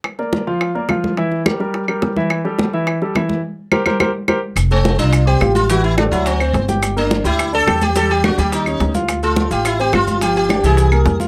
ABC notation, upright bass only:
X:1
M:4/4
L:1/8
Q:1/4=212
K:F
V:1 name="Upright bass" clef=bass
z8 | z8 | z8 | z8 |
F,,,3 C,,3 A,,,2- | A,,,3 D,,3 G,,,2- | G,,,3 D,,3 E,,2- | E,,3 _E,,3 D,,2- |
D,,3 A,,,3 G,,,2- | G,,,3 C,,3 F,,2 |]